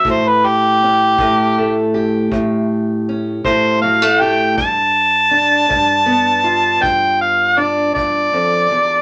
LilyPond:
<<
  \new Staff \with { instrumentName = "Harmonica" } { \time 12/8 \key a \dorian \tempo 4. = 53 c''16 b'16 g'2 r2 c''8 f''8 g''8 | a''2. g''8 f''8 d''8 d''4. | }
  \new Staff \with { instrumentName = "Steel-string acoustic guitar" } { \clef bass \time 12/8 \key a \dorian << { r4 cis'4 a8 g'4. cis'4 fis16 a16 g'8 | r4 d'4 b8 f'4. d'2 | } \\ { a,4. a,4. a,4. a,4. | g,4. g,4. g,4. g,8 f,8 e,8 | } >> }
  \new DrumStaff \with { instrumentName = "Drums" } \drummode { \time 12/8 bd4. bd4. bd4. bd4. | bd4. bd4. bd4. bd4. | }
>>